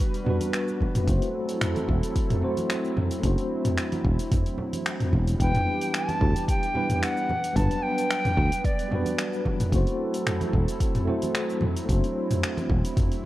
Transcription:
Already playing: G3 B3 D4 F#4 B4
0.00 kick, open hi-hat, cabasa
0.14 open hi-hat, cabasa
0.23 G3 B3 D4, mid tom, low conga
0.28 F#4 B4
0.41 open hi-hat, high conga, cabasa
0.54 finger snap, open hi-hat, cabasa
0.68 cabasa
0.81 kick, high conga, low conga
0.95 mid tom, open hi-hat, cabasa
1.04 F#1 F#3 A3 C4 E4 A4, kick, open hi-hat, cabasa
1.09 E4 F#4 C5
1.22 open hi-hat, cabasa
1.49 open hi-hat, cabasa
1.61 finger snap, mid tom, open hi-hat, cabasa
1.76 open hi-hat, high conga, cabasa
1.88 E1, kick, low conga
2.03 open hi-hat, cabasa
2.16 kick, open hi-hat, cabasa
2.30 mid tom, open hi-hat, cabasa
2.41 A3 C4 E4 F#4 C5, low conga
2.57 open hi-hat, high conga, cabasa
2.70 finger snap, open hi-hat, cabasa
2.85 cabasa
2.97 E4, mid tom, high conga, low conga
3.11 open hi-hat, cabasa
3.20 F#1 A3 C4 D4, kick, open hi-hat, cabasa
3.25 F#4 C5
3.38 open hi-hat, cabasa
3.65 mid tom, open hi-hat, cabasa
3.78 finger snap, open hi-hat, cabasa
3.92 open hi-hat, high conga, cabasa
4.04 E1, kick, low conga
4.19 open hi-hat, cabasa
4.32 kick, mid tom, open hi-hat, cabasa
4.46 open hi-hat, cabasa
4.58 low conga
4.73 open hi-hat, high conga, cabasa
4.86 finger snap, open hi-hat, cabasa
5.00 mid tom, open hi-hat, cabasa
5.13 E1, kick, high conga, low conga
5.27 open hi-hat, cabasa
5.37 E1 E3 G3 B3 D4 G4 G5, kick, open hi-hat, cabasa
5.42 E4 B4
5.55 mid tom, open hi-hat, cabasa
5.81 open hi-hat, cabasa
5.94 A5, finger snap, open hi-hat, cabasa
6.08 open hi-hat, high conga, cabasa
6.21 D2, kick, mid tom, low conga
6.36 open hi-hat, cabasa
6.48 G5, kick, open hi-hat, cabasa
6.63 open hi-hat, cabasa
6.74 G3 B3 D4 E4 B4, low conga
6.90 mid tom, open hi-hat, high conga, cabasa
7.02 F#5, finger snap, open hi-hat, cabasa
7.17 cabasa
7.29 B3 D4 B4, high conga, low conga
7.44 open hi-hat, cabasa
7.53 G1 G3 B3 D4 A5, kick, mid tom, open hi-hat, cabasa
7.58 F#3 B4
7.71 open hi-hat, cabasa
7.83 G5
7.98 open hi-hat, cabasa
8.11 finger snap, open hi-hat, cabasa
8.25 mid tom, open hi-hat, high conga, cabasa
8.37 D2, kick, low conga
8.52 open hi-hat, cabasa
8.64 D5, kick, open hi-hat, cabasa
8.79 open hi-hat, cabasa
8.88 G3 B3 D4, mid tom, low conga
8.93 F#4 B4
9.06 open hi-hat, high conga, cabasa
9.19 finger snap, open hi-hat, cabasa
9.33 cabasa
9.45 kick, high conga, low conga
9.60 mid tom, open hi-hat, cabasa
9.69 F#1 F#3 A3 C4 E4, kick, open hi-hat, cabasa
9.73 E4 F#4 A4 C5
9.87 open hi-hat, cabasa
10.14 open hi-hat, cabasa
10.27 finger snap, mid tom, open hi-hat, cabasa
10.41 open hi-hat, high conga, cabasa
10.53 E1, kick, low conga
10.68 open hi-hat, cabasa
10.80 kick, open hi-hat, cabasa
10.95 mid tom, open hi-hat, cabasa
11.06 A3 C4 E4 F#4 C5, low conga
11.22 open hi-hat, high conga, cabasa
11.35 finger snap, open hi-hat, cabasa
11.50 cabasa
11.61 E4, mid tom, high conga, low conga
11.76 open hi-hat, cabasa
11.85 F#1 A3 C4 D4, kick, open hi-hat
11.89 F#4 C5, cabasa
12.04 open hi-hat, cabasa
12.31 mid tom, open hi-hat, cabasa
12.44 finger snap, open hi-hat, cabasa
12.58 open hi-hat, high conga, cabasa
12.70 E1, kick, low conga
12.85 open hi-hat, cabasa
12.97 kick, mid tom, open hi-hat, cabasa
13.12 open hi-hat, cabasa

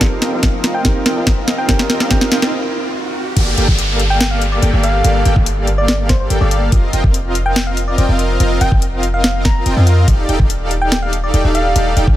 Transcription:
Already playing: F3, riser
0.00 C4 D#4 F4 G4 A#4, kick, snare, closed hi-hat
0.22 C4 F4 A#4 D#5 G5, snare, closed hi-hat
0.33 C4 F4 A#4 D#5 F5
0.43 kick, snare, closed hi-hat
0.64 snare, closed hi-hat
0.74 G5
0.83 C4 D#4 G4 A#4 D#5, kick, snare, closed hi-hat
0.87 A#4
1.06 C4 F4 A#4 D#5 G5, snare, closed hi-hat
1.16 C4 F4 A#4 D#5 F5
1.27 kick, snare, closed hi-hat
1.48 snare, closed hi-hat
1.58 G5
1.67 C4 D#4 F4 G4 A#4 D#5 F5 G5, kick, snare, closed hi-hat
1.79 snare
1.90 C4 F4 A#4 D#5 G5, snare, closed hi-hat
2.00 C4 F4 A#4 D#5 F5, snare
2.09 C4 D#4 F4 G4 A#4 D#5 G5, kick, snare, closed hi-hat
2.13 A#4
2.21 snare
2.32 C4 F4 A#4 D#5 G5, snare, closed hi-hat
2.42 C4 F4 A#4 D#5 F5, snare
3.36 G1 A#3 G4 A4 D5 F5, kick, closed hi-hat, crash, downlifter
3.57 G1 A#3 G4 A4 D5 G5, closed hi-hat
3.68 G1 A#3 G4 A4 D5 F5, kick
3.79 closed hi-hat
4.00 closed hi-hat
4.10 G5
4.21 snare, closed hi-hat
4.31 F5
4.42 closed hi-hat
4.52 D5
4.62 G1 A#3 G4 A4 D5 G5, closed hi-hat
4.73 G1 A#3 G4 A4 D5 F5
4.83 F5, closed hi-hat
5.04 G1 A#3 G4 A4 D5 F5, closed hi-hat
5.25 G1 A#3 G4 A4 D5 G5, closed hi-hat
5.36 G1 A#3 A4 D5 F5, kick
5.46 closed hi-hat
5.67 closed hi-hat
5.78 D5
5.88 D5, snare, closed hi-hat
6.09 C5, kick, snare, closed hi-hat
6.20 C5
6.30 G1 A#3 G4 A4 D5 G5, closed hi-hat
6.41 G1 A#3 G4 A4 D5 F5
6.51 D5, closed hi-hat
6.72 F1 C4 F4 A#4 D#5 F5, kick, closed hi-hat
6.93 F1 C4 F4 A#4 D#5 G5, closed hi-hat
7.04 F1, kick
7.14 closed hi-hat
7.35 closed hi-hat
7.46 G5
7.56 snare, closed hi-hat
7.67 F5
7.77 closed hi-hat
7.88 D5
7.98 F1 C4 F4 A#4 D5 D#5 G5, closed hi-hat
8.09 F1 C4 F4 A#4 D#5 F5
8.19 closed hi-hat
8.40 F1 C4 F4 A#4 D#5 F5, closed hi-hat
8.61 F1 C4 F4 A#4 D#5 G5, closed hi-hat
8.72 F1, kick
8.82 closed hi-hat
9.03 closed hi-hat
9.14 F5
9.24 snare, closed hi-hat
9.45 A#5, kick, snare, closed hi-hat
9.66 F1 C4 F4 A#4 D#5 G5, closed hi-hat
9.77 F2 C4 F4 A#4 D#5 F5
9.87 closed hi-hat
10.08 D#1 D#4 G4 A4 D5 F5, kick, closed hi-hat
10.29 D#1 D#4 G4 A4 D5 G5, closed hi-hat
10.40 D#1 G4 A4 D5 F5, kick
10.50 closed hi-hat
10.71 closed hi-hat
10.82 G5
10.92 G5, snare, closed hi-hat
11.03 F5
11.13 closed hi-hat
11.24 D5
11.34 D#1 D#4 G4 A4 D5 G5, closed hi-hat
11.44 D#1 D#4 G4 A4 D5 F5
11.55 F5, closed hi-hat
11.76 D#1 D#4 G4 A4 D5 F5, closed hi-hat
11.97 D#1 D#4 G4 A4 D5 G5, closed hi-hat
12.07 D#1 D#4 G4 A4 D5 F5, kick

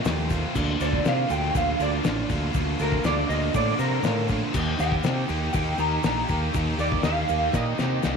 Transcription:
0.05 D#2 C3 F3 A3 C4 F4, snare, open hi-hat, shaker
0.29 C3 F3 A3 C4 F4, kick, open hi-hat, shaker
0.55 D2 D3 A#3 D4 F4, kick, crash, shaker
0.80 D2 D3 A#3 D4 F4 D5, open hi-hat, shaker
0.93 kick
1.05 C3 D3 A#3 D4 F4 F5, snare, open hi-hat, shaker
1.29 D2 D3 A#3 D4 F4 G5, open hi-hat, shaker
1.55 D2 D3 A#3 D4 F4 F5, kick, open hi-hat, shaker
1.79 D2 D3 A#3 D4 F4 D5, open hi-hat, shaker
2.04 A1 D3 A#3 D4 F4, snare, open hi-hat, shaker
2.29 D2 D3 A#3 D4 F4, kick, open hi-hat, shaker
2.54 D2 D3 A#3 D4 F4, kick, open hi-hat, shaker
2.79 D2 D3 A#3 D4 F4 A#4, open hi-hat, shaker
2.92 kick
3.04 D2 D3 A#3 D4 F4 D5, snare, open hi-hat, shaker
3.29 D2 D3 A#3 D4 F4 D#5, open hi-hat, shaker
3.54 A2 D3 A#3 D4 F4 D5, kick, open hi-hat, shaker
3.79 C3 D3 A#3 D4 F4 A#4, open hi-hat, shaker
4.03 A2 D3 A#3 D4 F4, snare, open hi-hat, shaker
4.28 D3 A#3 D4 F4, kick, open hi-hat, shaker
4.54 D#2 D#3 A#3 D#4 G4, kick, crash, shaker
4.78 D#2 D#3 A#3 D#4 G4 G5, open hi-hat, shaker
4.92 kick
5.03 C3 D#3 A#3 D#4 G4, snare, open hi-hat, shaker
5.28 D#2 D#3 A#3 D#4 G4, open hi-hat, shaker
5.53 D#2 D#3 A#3 D#4 G4 G5, kick, open hi-hat, shaker
5.78 D#2 D#3 A#3 D#4 G4 A#5, open hi-hat, shaker
6.03 A#1 D#3 A#3 D#4 G4 A#5, snare, open hi-hat, shaker
6.28 D#2 D#3 A#3 D#4 G4, kick, open hi-hat, shaker
6.54 D#2 D#3 A#3 D#4 G4, kick, open hi-hat, shaker
6.78 D#2 D#3 A#3 D#4 G4 D5, open hi-hat, shaker
6.92 kick
7.03 D#2 D#3 A#3 D#4 G4 F5, snare, open hi-hat, shaker
7.29 D#2 D#3 A#3 D#4 G4, open hi-hat, shaker
7.53 A#2 D#3 A#3 D#4 G4 D#5, kick, snare, shaker
7.78 C3 D#3 A#3 D#4 G4, snare, shaker
8.03 C2 D#3 A#3 D#4 G4, snare, shaker

